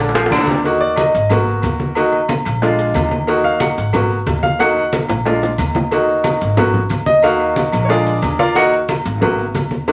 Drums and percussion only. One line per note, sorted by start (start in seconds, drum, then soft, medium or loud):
0.09 low timbale medium
0.15 cowbell medium
0.15 high bongo medium
0.15 high conga soft
0.15 maracas soft
0.20 low timbale medium
0.26 high bongo loud
0.30 cowbell medium
0.30 high conga medium
0.30 low agogo loud
0.30 claves medium
0.30 maracas medium
0.38 low bongo medium
0.38 low timbale medium
0.47 low bongo medium
0.47 high conga medium
0.47 low agogo medium
0.47 maracas soft
0.52 low timbale medium
0.63 cowbell loud
0.63 high conga soft
0.63 low agogo medium
0.63 maracas medium
0.81 high conga soft
0.81 maracas soft
0.96 cowbell medium
0.96 high conga loud
0.96 low agogo loud
0.96 maracas medium
1.14 cowbell medium
1.14 maracas soft
1.30 cowbell loud
1.30 high conga soft
1.30 low conga medium
1.30 low agogo loud
1.30 maracas medium
1.47 high conga soft
1.47 maracas soft
1.62 cowbell medium
1.62 high conga medium
1.62 low agogo medium
1.62 maracas medium
1.80 high conga medium
1.80 maracas soft
1.95 cowbell loud
1.95 high conga soft
1.95 low agogo loud
1.95 maracas medium
2.12 high conga soft
2.12 low agogo medium
2.12 maracas soft
2.29 cowbell medium
2.29 high conga loud
2.29 low agogo medium
2.29 maracas medium
2.45 cowbell medium
2.45 high conga soft
2.45 low agogo loud
2.45 maracas soft
2.62 cowbell loud
2.62 high conga soft
2.62 low agogo medium
2.62 maracas medium
2.78 cowbell medium
2.78 high conga soft
2.78 maracas soft
2.94 cowbell medium
2.94 high conga medium
2.94 low timbale medium
2.94 low agogo loud
2.94 maracas medium
3.11 high conga medium
3.11 low agogo medium
3.11 maracas soft
3.27 cowbell loud
3.27 high conga soft
3.27 low agogo medium
3.27 maracas medium
3.44 high conga soft
3.44 maracas soft
3.60 cowbell medium
3.60 high conga medium
3.60 low agogo loud
3.60 maracas medium
3.78 cowbell medium
3.78 maracas soft
3.93 cowbell loud
3.93 high conga soft
3.93 low conga medium
3.93 low agogo loud
3.93 maracas medium
4.10 high conga soft
4.10 maracas soft
4.27 cowbell medium
4.27 high conga medium
4.27 low timbale medium
4.27 low agogo medium
4.27 maracas medium
4.43 high conga medium
4.43 maracas soft
4.60 cowbell loud
4.60 high bongo medium
4.60 high conga soft
4.60 low agogo loud
4.60 maracas medium
4.76 high conga soft
4.76 low agogo medium
4.76 maracas soft
4.93 cowbell medium
4.93 high bongo medium
4.93 high conga loud
4.93 low agogo medium
4.93 maracas medium
5.08 cowbell medium
5.08 low bongo loud
5.08 high conga soft
5.08 low agogo medium
5.08 maracas soft
5.25 cowbell loud
5.25 low bongo loud
5.25 high conga soft
5.25 low agogo medium
5.25 maracas medium
5.42 cowbell medium
5.42 low bongo medium
5.42 high conga soft
5.42 maracas soft
5.58 cowbell medium
5.58 high conga medium
5.58 low agogo loud
5.58 maracas medium
5.75 low bongo loud
5.75 high conga medium
5.75 low agogo medium
5.75 maracas soft
5.91 cowbell loud
5.91 high conga soft
5.91 low agogo medium
5.91 maracas medium
6.08 high conga soft
6.08 maracas soft
6.24 cowbell medium
6.24 high conga loud
6.24 low agogo loud
6.24 maracas medium
6.41 cowbell medium
6.41 maracas soft
6.57 cowbell loud
6.57 high conga soft
6.57 low conga medium
6.57 low agogo loud
6.57 maracas medium
6.73 high conga soft
6.73 low conga medium
6.73 maracas soft
6.89 cowbell medium
6.89 high conga medium
6.89 low agogo medium
6.89 maracas medium
7.06 high conga medium
7.06 maracas soft
7.23 cowbell loud
7.23 high conga soft
7.23 low agogo loud
7.23 maracas medium
7.40 high conga soft
7.40 low agogo medium
7.40 maracas soft
7.56 cowbell medium
7.56 high conga loud
7.56 low agogo medium
7.56 maracas medium
7.72 cowbell medium
7.72 high conga soft
7.72 low agogo loud
7.72 maracas soft
7.90 cowbell loud
7.90 high conga soft
7.90 low agogo medium
7.90 maracas medium
8.06 cowbell medium
8.06 high conga soft
8.06 maracas soft
8.22 cowbell medium
8.22 high conga medium
8.22 low agogo loud
8.22 maracas medium
8.39 high conga medium
8.39 low agogo loud
8.39 maracas soft
8.55 cowbell loud
8.55 high conga soft
8.55 low agogo loud
8.55 maracas medium
8.72 high conga soft
8.72 maracas soft
8.88 cowbell medium
8.88 high conga loud
8.88 low agogo loud
8.88 maracas medium
9.05 cowbell medium
9.05 maracas soft
9.22 cowbell loud
9.22 high conga soft
9.22 low conga medium
9.22 low agogo loud
9.22 maracas medium
9.38 high conga soft
9.38 maracas soft
9.55 cowbell medium
9.55 high conga medium
9.55 low timbale medium
9.55 low agogo medium
9.55 maracas medium
9.71 high conga medium
9.71 maracas soft
9.88 cowbell loud
9.88 high conga soft
9.88 high timbale loud
9.88 low agogo loud
9.88 maracas medium